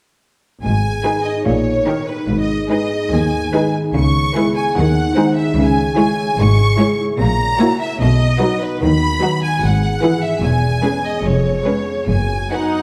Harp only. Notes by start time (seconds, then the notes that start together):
0.64 G#2
0.85 B3
1.06 G#4
1.26 D#4
1.47 A#2
1.68 A#3
1.88 G4
2.09 D#4
2.30 G#2
2.50 B3
2.71 G#4
2.92 D#4
3.14 D#3
3.35 B3
3.55 G#4
3.76 D#4
3.97 C#3
4.17 B3
4.37 G#4
4.57 E4
4.77 D#3
4.96 D#4
5.16 C5
5.37 G#4
5.57 C#3
5.77 C#4
5.97 G#4
6.18 E4
6.39 G#3
6.60 C#4
6.80 G#4
7.01 E4
7.21 A#2
7.41 C#4
7.61 F#4
7.81 E4
8.01 B2
8.21 B3
8.41 F#4
8.62 D#4
8.83 D#3
9.03 D#4
9.23 B4
9.43 F#4
9.63 G#2
9.83 B3
10.03 G#4
10.23 E4
10.43 E2
10.63 B3
11.04 C#4
11.25 F2
11.45 B3
11.66 G#4
11.86 C#4
12.08 F#2
12.29 B3
12.51 F#4
12.73 D#4